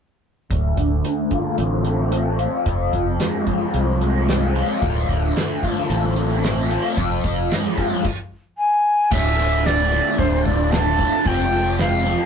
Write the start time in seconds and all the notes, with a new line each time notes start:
0.51 D1 D2, kick, closed hi-hat
0.77 D1 D3, kick, closed hi-hat
1.04 A3, closed hi-hat
1.31 F4, kick, closed hi-hat
1.58 A1 C4, closed hi-hat
1.85 A3, closed hi-hat
2.12 C4, closed hi-hat
2.39 F4, closed hi-hat
2.66 F1 F2, kick, closed hi-hat
2.93 F1 F3, kick, closed hi-hat
3.20 G#3, snare, closed hi-hat
3.47 F4, kick, closed hi-hat
3.74 C2 C4, closed hi-hat
4.01 G#3, closed hi-hat
4.28 C4, snare, closed hi-hat
4.55 F4, closed hi-hat
4.81 D1 D2, kick, closed hi-hat
5.08 D1 D3, kick, closed hi-hat
5.36 A3, snare, closed hi-hat
5.63 F4, kick, closed hi-hat
5.90 A1 C4, closed hi-hat
6.16 A3, closed hi-hat
6.44 C4, snare, closed hi-hat
6.70 F4, closed hi-hat
6.97 F1 F2, kick, closed hi-hat
7.24 F1 F3, kick, closed hi-hat
7.51 G#3, snare, closed hi-hat
7.77 F4, kick, closed hi-hat
8.05 kick, crash
8.58 G#5
9.11 D1 D2 A2 D3 C4 D4 F4 E5, kick, crash
9.38 A2 D3, snare, open hi-hat
9.64 D2 A2 D3 D5, snare, open hi-hat
9.92 D2 A2 D3, open hi-hat
10.18 D1 D2 A2 D3 C5, kick, open hi-hat
10.45 D2 A2 D3 D5, kick, open hi-hat
10.71 D2 A2 D3 A5, snare, open hi-hat
10.98 A2 D3, kick, open hi-hat
11.25 F1 F2 C3 F3 G#3 G5, kick, open hi-hat
11.52 C3 F3, open hi-hat
11.79 F2 C3 F3 F5, snare, open hi-hat
12.05 F2 C3 F3, open hi-hat